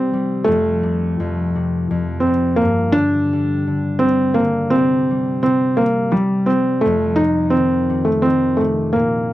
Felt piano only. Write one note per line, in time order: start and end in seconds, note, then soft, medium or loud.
0.00 0.48 C4 medium
0.44 2.30 A3 medium
2.20 2.61 C4 medium
2.56 2.93 A#3 medium
2.92 4.05 D4 loud
3.99 4.38 C4 medium
4.34 4.74 A#3 medium
4.70 5.41 C4 medium
5.43 5.80 C4 medium
5.77 6.11 A#3 medium
6.12 6.49 G3 medium
6.46 6.84 C4 medium
6.81 7.19 A3 medium
7.16 7.53 D#4 medium
7.50 8.06 C4 medium
8.05 8.24 A3 medium
8.22 8.60 C4 medium
8.57 8.95 A3 medium
8.93 9.33 A#3 medium